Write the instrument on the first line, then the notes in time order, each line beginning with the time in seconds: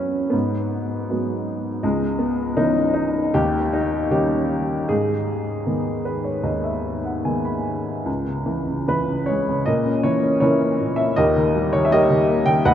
upright piano
Already playing: F#2 F#3 B3 C#4
0.30 G#2 B3
1.10 F#3 G#3 B3
1.83 C#2 G#3
2.19 B3
2.57 E3 B3 C#4 D#4
2.94 D#4
3.34 D#2 G4
3.73 D#4
4.11 D#3 G3 C#4 G4
4.89 G#2 G#4
5.66 D#3 G#3 B3
6.05 B4
6.24 C#5
6.43 D#2 D#5
6.64 E5
7.05 F#5
7.25 D#3 G#3 B3 G#5
7.45 B5
8.06 C#2
8.27 C#3
8.46 E3
8.67 C#3
8.88 E3 B4
9.08 C#3
9.26 G#3 C#5
9.49 C#3
9.66 A#2 A#4 D#5
9.86 C#4
10.03 E3 C#5
10.23 C#4
10.40 E3 E4 A#4 C#5
10.61 C#4
10.80 A#2
10.96 C#4 E5
11.16 D#2 G4 A#4 D#5
11.36 D#3
11.55 G3
11.73 D#3 C#5
11.85 E5
11.92 G3 G4 A#4 D#5
12.11 D#3
12.28 A#3
12.46 D#3 G5
12.65 D#2 B4 D#5 F#5